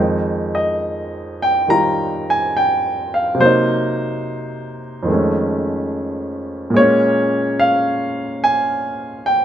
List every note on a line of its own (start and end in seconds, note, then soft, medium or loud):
0.00 3.39 F2 soft
0.00 1.67 D#3 soft
0.00 3.40 G#3 soft
0.00 3.41 D#4 soft
0.55 1.38 D#5 medium
1.42 1.71 G5 medium
1.68 3.39 D#3 soft
1.68 3.40 G3 soft
1.68 3.41 F4 soft
1.68 2.25 A#5 medium
2.30 2.54 G#5 medium
2.57 3.16 G5 medium
3.14 3.20 F5 medium
3.35 5.06 C3 medium
3.35 5.08 F#3 soft
3.40 5.09 A#3 medium
3.40 4.79 C5 medium
3.45 5.11 D#4 medium
5.03 6.74 F2 soft
5.03 6.75 D#3 soft
5.08 6.72 G#3 soft
5.08 6.78 A3 soft
5.13 6.79 C#4 soft
6.70 9.45 A#2 medium
6.70 9.45 G#3 medium
6.77 9.45 A#3 soft
6.77 7.63 C#5 medium
6.82 9.45 C#4 medium
7.60 8.46 F5 medium
8.44 9.30 G#5 medium
9.26 9.45 G5 medium